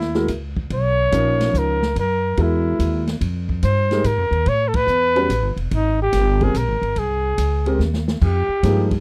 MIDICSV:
0, 0, Header, 1, 6, 480
1, 0, Start_track
1, 0, Tempo, 416956
1, 813, Time_signature, 3, 2, 24, 8
1, 10363, End_track
2, 0, Start_track
2, 0, Title_t, "Trumpet"
2, 0, Program_c, 0, 56
2, 0, Note_on_c, 0, 64, 74
2, 318, Note_off_c, 0, 64, 0
2, 850, Note_on_c, 0, 73, 100
2, 1822, Note_on_c, 0, 70, 84
2, 1839, Note_off_c, 0, 73, 0
2, 2278, Note_off_c, 0, 70, 0
2, 2299, Note_on_c, 0, 70, 85
2, 2789, Note_on_c, 0, 64, 69
2, 2806, Note_off_c, 0, 70, 0
2, 3563, Note_off_c, 0, 64, 0
2, 4200, Note_on_c, 0, 72, 87
2, 4677, Note_on_c, 0, 70, 90
2, 4694, Note_off_c, 0, 72, 0
2, 5165, Note_on_c, 0, 73, 95
2, 5183, Note_off_c, 0, 70, 0
2, 5391, Note_on_c, 0, 69, 66
2, 5408, Note_off_c, 0, 73, 0
2, 5481, Note_on_c, 0, 71, 104
2, 5498, Note_off_c, 0, 69, 0
2, 6428, Note_off_c, 0, 71, 0
2, 6614, Note_on_c, 0, 63, 83
2, 6894, Note_off_c, 0, 63, 0
2, 6931, Note_on_c, 0, 67, 89
2, 7411, Note_on_c, 0, 68, 77
2, 7428, Note_off_c, 0, 67, 0
2, 7565, Note_on_c, 0, 70, 84
2, 7582, Note_off_c, 0, 68, 0
2, 8045, Note_on_c, 0, 68, 78
2, 8062, Note_off_c, 0, 70, 0
2, 8988, Note_off_c, 0, 68, 0
2, 9487, Note_on_c, 0, 67, 85
2, 10224, Note_off_c, 0, 67, 0
2, 10363, End_track
3, 0, Start_track
3, 0, Title_t, "Upright piano"
3, 0, Program_c, 1, 0
3, 172, Note_on_c, 1, 56, 65
3, 173, Note_on_c, 1, 64, 59
3, 177, Note_on_c, 1, 66, 58
3, 180, Note_on_c, 1, 70, 68
3, 315, Note_off_c, 1, 56, 0
3, 316, Note_off_c, 1, 64, 0
3, 318, Note_off_c, 1, 66, 0
3, 319, Note_off_c, 1, 70, 0
3, 1288, Note_on_c, 1, 53, 57
3, 1293, Note_on_c, 1, 63, 52
3, 1294, Note_on_c, 1, 61, 53
3, 1300, Note_on_c, 1, 70, 66
3, 2029, Note_off_c, 1, 53, 0
3, 2031, Note_off_c, 1, 63, 0
3, 2032, Note_off_c, 1, 61, 0
3, 2035, Note_off_c, 1, 70, 0
3, 2733, Note_on_c, 1, 56, 61
3, 2735, Note_on_c, 1, 64, 51
3, 2736, Note_on_c, 1, 66, 52
3, 2745, Note_on_c, 1, 70, 66
3, 3471, Note_off_c, 1, 56, 0
3, 3472, Note_off_c, 1, 64, 0
3, 3472, Note_off_c, 1, 66, 0
3, 3477, Note_off_c, 1, 70, 0
3, 4504, Note_on_c, 1, 56, 65
3, 4508, Note_on_c, 1, 63, 62
3, 4514, Note_on_c, 1, 67, 55
3, 4514, Note_on_c, 1, 70, 66
3, 4642, Note_off_c, 1, 56, 0
3, 4644, Note_off_c, 1, 63, 0
3, 4647, Note_off_c, 1, 67, 0
3, 4647, Note_off_c, 1, 70, 0
3, 5935, Note_on_c, 1, 55, 70
3, 5935, Note_on_c, 1, 61, 60
3, 5939, Note_on_c, 1, 66, 67
3, 5945, Note_on_c, 1, 71, 73
3, 6077, Note_off_c, 1, 55, 0
3, 6077, Note_off_c, 1, 61, 0
3, 6079, Note_off_c, 1, 66, 0
3, 6082, Note_off_c, 1, 71, 0
3, 7380, Note_on_c, 1, 56, 59
3, 7387, Note_on_c, 1, 60, 55
3, 7387, Note_on_c, 1, 67, 55
3, 7394, Note_on_c, 1, 70, 68
3, 7519, Note_off_c, 1, 56, 0
3, 7522, Note_off_c, 1, 60, 0
3, 7523, Note_off_c, 1, 67, 0
3, 7526, Note_off_c, 1, 70, 0
3, 8819, Note_on_c, 1, 56, 66
3, 8825, Note_on_c, 1, 60, 59
3, 8825, Note_on_c, 1, 67, 60
3, 8832, Note_on_c, 1, 70, 68
3, 8958, Note_off_c, 1, 56, 0
3, 8961, Note_off_c, 1, 60, 0
3, 8961, Note_off_c, 1, 67, 0
3, 8965, Note_off_c, 1, 70, 0
3, 9940, Note_on_c, 1, 53, 64
3, 9942, Note_on_c, 1, 56, 62
3, 9945, Note_on_c, 1, 58, 57
3, 9946, Note_on_c, 1, 63, 56
3, 9948, Note_on_c, 1, 67, 70
3, 10224, Note_off_c, 1, 53, 0
3, 10226, Note_off_c, 1, 56, 0
3, 10227, Note_off_c, 1, 58, 0
3, 10228, Note_off_c, 1, 63, 0
3, 10228, Note_off_c, 1, 67, 0
3, 10363, End_track
4, 0, Start_track
4, 0, Title_t, "Upright bass"
4, 0, Program_c, 2, 32
4, 0, Note_on_c, 2, 39, 89
4, 316, Note_off_c, 2, 39, 0
4, 329, Note_on_c, 2, 37, 78
4, 796, Note_off_c, 2, 37, 0
4, 810, Note_on_c, 2, 35, 75
4, 1277, Note_off_c, 2, 35, 0
4, 1294, Note_on_c, 2, 34, 89
4, 1759, Note_off_c, 2, 34, 0
4, 1769, Note_on_c, 2, 37, 74
4, 2237, Note_off_c, 2, 37, 0
4, 2253, Note_on_c, 2, 42, 80
4, 2719, Note_off_c, 2, 42, 0
4, 2735, Note_on_c, 2, 40, 83
4, 3200, Note_off_c, 2, 40, 0
4, 3216, Note_on_c, 2, 39, 80
4, 3680, Note_off_c, 2, 39, 0
4, 3694, Note_on_c, 2, 41, 81
4, 4159, Note_off_c, 2, 41, 0
4, 4178, Note_on_c, 2, 43, 87
4, 4641, Note_off_c, 2, 43, 0
4, 4653, Note_on_c, 2, 44, 83
4, 4808, Note_off_c, 2, 44, 0
4, 4808, Note_on_c, 2, 41, 52
4, 4954, Note_off_c, 2, 41, 0
4, 4961, Note_on_c, 2, 39, 60
4, 5115, Note_off_c, 2, 39, 0
4, 5138, Note_on_c, 2, 45, 79
4, 5597, Note_off_c, 2, 45, 0
4, 5604, Note_on_c, 2, 40, 80
4, 6074, Note_off_c, 2, 40, 0
4, 6093, Note_on_c, 2, 33, 76
4, 6244, Note_off_c, 2, 33, 0
4, 6244, Note_on_c, 2, 31, 54
4, 6398, Note_off_c, 2, 31, 0
4, 6405, Note_on_c, 2, 28, 62
4, 6557, Note_off_c, 2, 28, 0
4, 6578, Note_on_c, 2, 32, 78
4, 7041, Note_off_c, 2, 32, 0
4, 7054, Note_on_c, 2, 31, 89
4, 7518, Note_off_c, 2, 31, 0
4, 7535, Note_on_c, 2, 34, 81
4, 7690, Note_off_c, 2, 34, 0
4, 7690, Note_on_c, 2, 32, 52
4, 7839, Note_off_c, 2, 32, 0
4, 7846, Note_on_c, 2, 31, 61
4, 7998, Note_off_c, 2, 31, 0
4, 8013, Note_on_c, 2, 36, 79
4, 8478, Note_off_c, 2, 36, 0
4, 8495, Note_on_c, 2, 37, 82
4, 8958, Note_off_c, 2, 37, 0
4, 8968, Note_on_c, 2, 39, 80
4, 9435, Note_off_c, 2, 39, 0
4, 9456, Note_on_c, 2, 41, 90
4, 9753, Note_off_c, 2, 41, 0
4, 9937, Note_on_c, 2, 43, 94
4, 10363, Note_off_c, 2, 43, 0
4, 10363, End_track
5, 0, Start_track
5, 0, Title_t, "Muted upright bass strokes"
5, 9768, Note_on_c, 9, 29, 38
5, 9883, Note_off_c, 9, 29, 0
5, 10363, End_track
6, 0, Start_track
6, 0, Title_t, "Drums"
6, 9, Note_on_c, 9, 38, 27
6, 124, Note_off_c, 9, 38, 0
6, 164, Note_on_c, 9, 38, 39
6, 279, Note_off_c, 9, 38, 0
6, 325, Note_on_c, 9, 44, 52
6, 325, Note_on_c, 9, 51, 58
6, 328, Note_on_c, 9, 36, 23
6, 440, Note_off_c, 9, 44, 0
6, 440, Note_off_c, 9, 51, 0
6, 443, Note_off_c, 9, 36, 0
6, 651, Note_on_c, 9, 36, 56
6, 766, Note_off_c, 9, 36, 0
6, 809, Note_on_c, 9, 51, 56
6, 811, Note_on_c, 9, 36, 18
6, 924, Note_off_c, 9, 51, 0
6, 926, Note_off_c, 9, 36, 0
6, 1292, Note_on_c, 9, 36, 23
6, 1293, Note_on_c, 9, 44, 60
6, 1293, Note_on_c, 9, 51, 61
6, 1407, Note_off_c, 9, 36, 0
6, 1408, Note_off_c, 9, 44, 0
6, 1408, Note_off_c, 9, 51, 0
6, 1618, Note_on_c, 9, 51, 59
6, 1619, Note_on_c, 9, 38, 47
6, 1733, Note_off_c, 9, 51, 0
6, 1734, Note_off_c, 9, 38, 0
6, 1774, Note_on_c, 9, 36, 24
6, 1774, Note_on_c, 9, 44, 50
6, 1889, Note_off_c, 9, 36, 0
6, 1889, Note_off_c, 9, 44, 0
6, 2099, Note_on_c, 9, 38, 50
6, 2215, Note_off_c, 9, 38, 0
6, 2256, Note_on_c, 9, 36, 19
6, 2258, Note_on_c, 9, 51, 57
6, 2371, Note_off_c, 9, 36, 0
6, 2373, Note_off_c, 9, 51, 0
6, 2732, Note_on_c, 9, 51, 53
6, 2734, Note_on_c, 9, 36, 22
6, 2847, Note_off_c, 9, 51, 0
6, 2849, Note_off_c, 9, 36, 0
6, 3216, Note_on_c, 9, 36, 17
6, 3219, Note_on_c, 9, 44, 45
6, 3219, Note_on_c, 9, 51, 59
6, 3331, Note_off_c, 9, 36, 0
6, 3334, Note_off_c, 9, 44, 0
6, 3334, Note_off_c, 9, 51, 0
6, 3539, Note_on_c, 9, 51, 38
6, 3540, Note_on_c, 9, 38, 50
6, 3654, Note_off_c, 9, 51, 0
6, 3655, Note_off_c, 9, 38, 0
6, 3696, Note_on_c, 9, 36, 20
6, 3697, Note_on_c, 9, 51, 60
6, 3812, Note_off_c, 9, 36, 0
6, 3813, Note_off_c, 9, 51, 0
6, 4018, Note_on_c, 9, 36, 41
6, 4133, Note_off_c, 9, 36, 0
6, 4174, Note_on_c, 9, 44, 54
6, 4174, Note_on_c, 9, 51, 63
6, 4177, Note_on_c, 9, 36, 19
6, 4289, Note_off_c, 9, 44, 0
6, 4289, Note_off_c, 9, 51, 0
6, 4292, Note_off_c, 9, 36, 0
6, 4499, Note_on_c, 9, 51, 41
6, 4501, Note_on_c, 9, 38, 46
6, 4614, Note_off_c, 9, 51, 0
6, 4616, Note_off_c, 9, 38, 0
6, 4654, Note_on_c, 9, 44, 46
6, 4654, Note_on_c, 9, 51, 61
6, 4656, Note_on_c, 9, 36, 19
6, 4769, Note_off_c, 9, 44, 0
6, 4769, Note_off_c, 9, 51, 0
6, 4771, Note_off_c, 9, 36, 0
6, 4979, Note_on_c, 9, 51, 39
6, 5094, Note_off_c, 9, 51, 0
6, 5133, Note_on_c, 9, 51, 56
6, 5137, Note_on_c, 9, 36, 25
6, 5248, Note_off_c, 9, 51, 0
6, 5252, Note_off_c, 9, 36, 0
6, 5453, Note_on_c, 9, 51, 69
6, 5459, Note_on_c, 9, 36, 73
6, 5568, Note_off_c, 9, 51, 0
6, 5574, Note_off_c, 9, 36, 0
6, 5612, Note_on_c, 9, 44, 53
6, 5727, Note_off_c, 9, 44, 0
6, 5940, Note_on_c, 9, 51, 41
6, 6055, Note_off_c, 9, 51, 0
6, 6097, Note_on_c, 9, 36, 18
6, 6098, Note_on_c, 9, 44, 54
6, 6098, Note_on_c, 9, 51, 63
6, 6212, Note_off_c, 9, 36, 0
6, 6213, Note_off_c, 9, 44, 0
6, 6213, Note_off_c, 9, 51, 0
6, 6416, Note_on_c, 9, 51, 42
6, 6531, Note_off_c, 9, 51, 0
6, 6576, Note_on_c, 9, 51, 57
6, 6577, Note_on_c, 9, 36, 21
6, 6691, Note_off_c, 9, 51, 0
6, 6692, Note_off_c, 9, 36, 0
6, 7053, Note_on_c, 9, 44, 51
6, 7053, Note_on_c, 9, 51, 69
6, 7054, Note_on_c, 9, 38, 36
6, 7055, Note_on_c, 9, 36, 21
6, 7168, Note_off_c, 9, 44, 0
6, 7168, Note_off_c, 9, 51, 0
6, 7169, Note_off_c, 9, 38, 0
6, 7170, Note_off_c, 9, 36, 0
6, 7375, Note_on_c, 9, 51, 42
6, 7377, Note_on_c, 9, 36, 49
6, 7490, Note_off_c, 9, 51, 0
6, 7492, Note_off_c, 9, 36, 0
6, 7534, Note_on_c, 9, 44, 58
6, 7534, Note_on_c, 9, 51, 62
6, 7536, Note_on_c, 9, 36, 18
6, 7649, Note_off_c, 9, 44, 0
6, 7649, Note_off_c, 9, 51, 0
6, 7651, Note_off_c, 9, 36, 0
6, 7860, Note_on_c, 9, 51, 42
6, 7975, Note_off_c, 9, 51, 0
6, 8012, Note_on_c, 9, 51, 53
6, 8015, Note_on_c, 9, 36, 21
6, 8127, Note_off_c, 9, 51, 0
6, 8130, Note_off_c, 9, 36, 0
6, 8495, Note_on_c, 9, 36, 20
6, 8495, Note_on_c, 9, 44, 56
6, 8495, Note_on_c, 9, 51, 67
6, 8610, Note_off_c, 9, 36, 0
6, 8610, Note_off_c, 9, 44, 0
6, 8610, Note_off_c, 9, 51, 0
6, 8819, Note_on_c, 9, 51, 41
6, 8934, Note_off_c, 9, 51, 0
6, 8977, Note_on_c, 9, 38, 41
6, 9092, Note_off_c, 9, 38, 0
6, 9137, Note_on_c, 9, 38, 51
6, 9252, Note_off_c, 9, 38, 0
6, 9299, Note_on_c, 9, 38, 71
6, 9414, Note_off_c, 9, 38, 0
6, 9458, Note_on_c, 9, 36, 73
6, 9460, Note_on_c, 9, 49, 76
6, 9573, Note_off_c, 9, 36, 0
6, 9575, Note_off_c, 9, 49, 0
6, 9937, Note_on_c, 9, 36, 21
6, 9939, Note_on_c, 9, 44, 60
6, 9939, Note_on_c, 9, 51, 70
6, 10052, Note_off_c, 9, 36, 0
6, 10054, Note_off_c, 9, 44, 0
6, 10054, Note_off_c, 9, 51, 0
6, 10258, Note_on_c, 9, 36, 52
6, 10259, Note_on_c, 9, 51, 47
6, 10363, Note_off_c, 9, 36, 0
6, 10363, Note_off_c, 9, 51, 0
6, 10363, End_track
0, 0, End_of_file